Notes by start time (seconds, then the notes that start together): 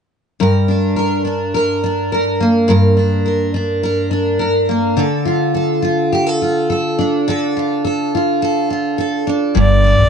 0.40 G2 A#4
0.68 D4
0.96 A#4
1.25 D4
1.54 A#4
1.84 D4
2.12 A#4
2.40 A#3
2.68 G2 A#4
2.97 D4
3.26 A#4
3.54 D4
3.83 A#4
4.11 D4
4.39 A#4
4.69 A#3
4.97 D3 A4
5.25 F4
5.54 A4
5.82 F4
6.12 G4
6.27 A4
6.42 F4
6.70 A4
6.99 D4
7.28 D3 A4
7.57 F4
7.84 A4
8.15 F4
8.42 A4
8.70 F4
8.98 A4
9.27 D4
9.55 G1 G2
9.61 D5
9.84 D4
10.00 A#1